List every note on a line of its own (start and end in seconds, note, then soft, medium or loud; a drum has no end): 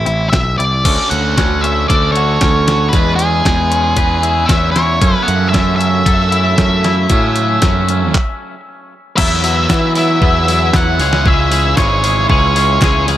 0.00 0.28 E4 medium
0.06 0.31 A1 medium
0.06 0.29 C4 medium
0.06 0.30 E4 medium
0.06 closed hi-hat medium
0.30 0.56 B1 medium
0.30 0.56 C4 medium
0.30 0.56 E4 medium
0.30 0.57 E5 medium
0.30 kick loud
0.30 snare loud
0.30 closed hi-hat medium
0.58 0.82 C2 medium
0.58 0.82 C4 medium
0.58 0.82 E4 medium
0.58 1.12 D5 medium
0.58 closed hi-hat medium
0.85 0.97 D2 medium
0.85 1.87 D3 medium
0.85 1.87 A3 medium
0.85 1.37 C#4 medium
0.85 1.88 F#4 medium
0.85 1.88 A4 medium
0.85 kick medium
0.85 closed hi-hat medium
0.85 crash loud
1.10 1.35 D2 medium
1.10 1.64 F#5 loud
1.10 closed hi-hat medium
1.37 1.85 D2 medium
1.37 1.63 C#4 medium
1.37 kick medium
1.37 snare medium
1.37 closed hi-hat medium
1.61 2.41 C#4 medium
1.61 1.88 E5 medium
1.61 closed hi-hat medium
1.88 2.37 D2 medium
1.88 2.91 D3 medium
1.88 2.92 A3 medium
1.88 2.92 F#4 medium
1.88 2.92 A4 medium
1.88 2.12 D5 medium
1.88 kick loud
1.88 closed hi-hat medium
2.12 2.94 C#5 medium
2.12 closed hi-hat medium
2.17 2.66 F#4 medium
2.41 2.89 D2 medium
2.41 3.70 C#4 medium
2.41 kick loud
2.41 snare loud
2.41 closed hi-hat medium
2.67 2.93 F#4 medium
2.67 snare medium
2.67 closed hi-hat medium
2.89 3.96 E3 medium
2.89 3.15 B4 medium
2.89 kick loud
2.89 closed hi-hat medium
2.93 3.41 E2 medium
2.93 3.96 G#3 medium
2.93 3.96 B3 medium
2.93 3.98 E4 medium
2.93 3.97 G#4 medium
3.16 4.51 G#4 medium
3.16 closed hi-hat medium
3.44 3.93 E2 medium
3.44 4.75 G#3 medium
3.44 kick loud
3.44 snare loud
3.44 closed hi-hat medium
3.71 4.49 C#4 medium
3.71 closed hi-hat medium
3.96 4.45 E2 medium
3.96 5.00 E3 medium
3.96 5.00 G#3 medium
3.96 5.00 B3 medium
3.96 5.02 E4 medium
3.96 5.01 G#4 medium
3.96 5.01 B4 medium
3.96 kick medium
3.96 closed hi-hat medium
4.23 4.75 E4 medium
4.23 closed hi-hat medium
4.46 4.73 E2 medium
4.46 5.01 C#4 medium
4.46 4.71 E5 medium
4.46 kick loud
4.46 snare loud
4.46 closed hi-hat medium
4.71 6.31 E4 medium
4.71 5.15 C#5 medium
4.76 5.00 E2 medium
4.76 snare medium
4.76 closed hi-hat medium
5.00 6.05 F#2 medium
5.00 5.14 F#2 medium
5.00 6.04 C#3 loud
5.00 6.06 F#3 medium
5.00 6.06 A3 medium
5.00 6.06 C#4 medium
5.00 8.10 A4 medium
5.00 6.07 A4 medium
5.00 8.11 E5 medium
5.00 8.11 F#5 medium
5.00 8.11 C#6 medium
5.00 kick loud
5.00 closed hi-hat medium
5.15 5.27 B4 medium
5.22 5.49 F#5 medium
5.28 5.52 F#2 medium
5.28 closed hi-hat medium
5.49 5.78 C#4 medium
5.49 5.75 E5 medium
5.54 6.02 F#2 loud
5.54 kick medium
5.54 snare loud
5.54 closed hi-hat medium
5.76 6.57 C#4 medium
5.76 8.60 E5 medium
5.81 closed hi-hat medium
6.05 7.08 F#2 medium
6.05 6.54 F#2 medium
6.05 7.08 C#3 medium
6.05 7.08 F#3 medium
6.05 7.09 A3 medium
6.05 7.09 C#4 medium
6.05 7.09 A4 medium
6.05 kick medium
6.05 closed hi-hat medium
6.32 6.84 E4 medium
6.32 closed hi-hat medium
6.58 7.06 F#2 medium
6.58 7.10 C#4 medium
6.58 kick loud
6.58 snare loud
6.58 closed hi-hat medium
6.84 8.15 E4 medium
6.84 snare medium
6.84 closed hi-hat medium
7.09 8.12 F#2 medium
7.09 7.58 A2 loud
7.09 8.13 C#3 loud
7.09 8.13 F#3 medium
7.09 8.13 A3 medium
7.09 8.13 C#4 loud
7.09 8.13 A4 medium
7.09 kick loud
7.09 closed hi-hat medium
7.36 closed hi-hat medium
7.62 8.10 F#2 loud
7.62 7.89 C#4 medium
7.62 kick loud
7.62 snare loud
7.62 closed hi-hat medium
7.89 8.15 C#4 medium
7.89 closed hi-hat medium
8.14 kick loud
8.14 clap medium
9.17 9.66 E2 loud
9.17 9.43 E3 medium
9.17 9.43 F#3 loud
9.17 9.43 B3 loud
9.17 9.44 E4 loud
9.17 10.99 B4 medium
9.17 9.91 E5 medium
9.17 13.17 E5 medium
9.17 10.98 F#5 medium
9.17 10.98 E6 medium
9.17 kick loud
9.17 crash loud
9.44 9.69 E3 medium
9.44 9.68 F#3 medium
9.44 9.69 B3 medium
9.44 9.70 E4 medium
9.44 open hi-hat medium
9.69 9.94 E3 medium
9.69 10.18 E3 medium
9.69 9.94 F#3 medium
9.69 9.94 B3 medium
9.69 9.95 E4 medium
9.69 kick loud
9.69 snare loud
9.69 clap loud
9.95 10.20 E3 medium
9.95 10.21 F#3 medium
9.95 10.20 B3 loud
9.95 10.21 E4 medium
9.95 10.77 E5 loud
9.95 open hi-hat medium
10.21 10.70 E2 loud
10.21 10.46 E3 medium
10.21 10.46 F#3 medium
10.21 10.46 B3 loud
10.21 10.47 E4 medium
10.21 kick loud
10.47 10.72 E3 medium
10.47 10.72 F#3 medium
10.47 10.72 B3 medium
10.47 10.73 E4 medium
10.47 open hi-hat medium
10.73 10.98 E2 medium
10.73 10.98 E3 medium
10.73 10.98 F#3 medium
10.73 10.98 B3 medium
10.73 10.98 E4 medium
10.73 11.28 F#5 medium
10.73 kick loud
10.73 snare loud
10.73 clap medium
10.99 11.74 C#2 loud
10.99 11.23 C#3 loud
10.99 11.24 E3 loud
10.99 11.23 G#3 loud
10.99 11.23 C#4 medium
10.99 11.24 E4 loud
10.99 11.25 G#4 loud
10.99 13.17 C#5 medium
10.99 13.17 G#5 medium
10.99 13.17 E6 medium
10.99 open hi-hat medium
11.13 snare medium
11.24 11.49 C#3 loud
11.24 11.49 E3 medium
11.24 11.49 G#3 loud
11.24 11.50 C#4 loud
11.24 11.50 E4 loud
11.24 11.51 G#4 loud
11.24 kick loud
11.28 11.77 E5 medium
11.50 11.75 C#3 medium
11.50 11.76 E3 medium
11.50 11.75 G#3 medium
11.50 11.76 C#4 medium
11.50 11.76 E4 medium
11.50 11.77 G#4 medium
11.50 open hi-hat medium
11.76 12.26 G#1 medium
11.76 12.01 C#3 medium
11.76 12.02 E3 medium
11.76 12.02 G#3 medium
11.76 12.02 C#4 medium
11.76 12.02 E4 loud
11.76 12.03 G#4 medium
11.76 12.26 C#5 medium
11.76 kick loud
11.76 snare loud
11.76 clap medium
12.02 12.27 C#3 medium
12.02 12.29 E3 medium
12.02 12.28 G#3 medium
12.02 12.28 C#4 medium
12.02 12.29 E4 medium
12.02 12.30 G#4 medium
12.02 open hi-hat medium
12.29 12.78 C#2 medium
12.29 12.53 C#3 medium
12.29 12.55 E3 loud
12.29 12.53 G#3 medium
12.29 12.53 C#4 loud
12.29 12.53 E4 loud
12.29 12.55 G#4 loud
12.29 13.04 C#5 medium
12.29 kick loud
12.54 12.79 C#3 medium
12.54 12.81 E3 medium
12.54 12.80 G#3 medium
12.54 12.79 C#4 medium
12.54 12.80 E4 medium
12.54 12.82 G#4 medium
12.54 open hi-hat medium
12.80 13.17 C#2 loud
12.80 13.05 C#3 medium
12.80 13.06 E3 medium
12.80 13.05 G#3 medium
12.80 13.05 C#4 medium
12.80 13.06 E4 medium
12.80 13.07 G#4 medium
12.80 kick loud
12.80 snare loud
12.80 clap loud
13.06 13.17 C#3 medium
13.06 13.17 E3 medium
13.06 13.17 G#3 medium
13.06 13.17 C#4 medium
13.06 13.17 E4 medium
13.06 13.17 G#4 medium
13.06 snare soft
13.06 open hi-hat medium